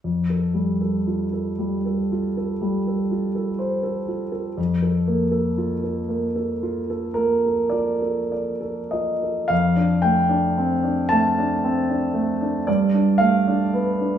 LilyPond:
\new Staff \with { instrumentName = "Grand piano" } { \time 9/8 \key f \major \tempo 4. = 38 << { r1 r8 | r2 r8 bes'8 d''4 ees''8 | f''8 g''4 a''4. d''8 f''4 | } \\ { f,16 a'16 g16 a'16 f'16 a'16 g16 a'16 f'16 a'16 g16 a'16 f'16 a'16 c''16 a'16 f'16 a'16 | f,16 a'16 bes16 a'16 f'16 a'16 bes16 a'16 f'16 a'16 bes16 a'16 f'16 a'16 d''16 a'16 f'16 a'16 | f,16 d'16 a16 d'16 c'16 d'16 a16 d'16 c'16 d'16 a16 d'16 g,16 d'16 a16 d'16 b16 d'16 | } >> }